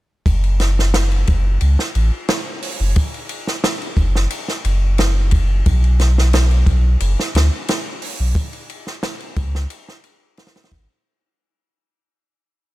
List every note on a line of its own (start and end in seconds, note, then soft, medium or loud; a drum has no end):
0.26 1.24 F#1 medium
0.26 kick medium
0.26 ride medium
0.44 ride soft
0.60 snare soft
0.60 ride medium
0.79 snare soft
0.94 snare loud
0.94 ride medium
1.11 ride soft
1.27 1.58 F#1 medium
1.27 kick medium
1.27 ride medium
1.61 1.77 C#2 medium
1.61 ride medium
1.79 snare soft
1.95 2.11 A1 medium
1.95 ride medium
2.28 snare loud
2.28 ride medium
2.62 open hi-hat medium
2.80 2.94 F#1 medium
2.96 kick loud
2.96 ride medium
3.14 ride soft
3.29 ride medium
3.47 snare soft
3.64 snare loud
3.64 ride medium
3.81 ride soft
3.97 4.27 F#1 medium
3.97 kick medium
3.97 ride medium
4.16 snare soft
4.30 ride medium
4.48 snare soft
4.65 5.63 F#1 medium
4.65 ride medium
4.98 snare loud
4.98 ride medium
5.31 kick medium
5.31 ride medium
5.66 6.64 B1 medium
5.66 kick loud
5.66 ride medium
5.84 ride soft
5.99 snare soft
5.99 ride medium
6.18 snare soft
6.33 snare loud
6.33 ride medium
6.51 ride soft
6.66 6.97 B1 medium
6.66 kick medium
6.66 ride medium
7.00 7.16 F#1 medium
7.00 ride medium
7.20 snare soft
7.35 7.50 D2 medium
7.35 snare loud
7.35 ride medium
7.68 snare loud
7.68 ride medium
8.02 open hi-hat medium
8.20 8.34 B1 medium
8.35 kick loud
8.35 ride medium
8.53 ride soft
8.69 ride medium
8.87 snare soft
9.03 snare loud
9.03 ride medium
9.20 ride soft
9.36 9.67 C#2 medium
9.36 kick loud
9.36 ride medium
9.55 snare soft
9.70 ride medium
9.89 snare soft
10.04 ride medium
10.37 snare medium
10.37 ride medium
10.47 snare medium
10.47 ride medium
10.56 snare medium
10.56 ride medium
10.64 snare medium
10.64 ride medium
10.71 10.87 G#1 medium
10.71 kick medium
10.71 ride medium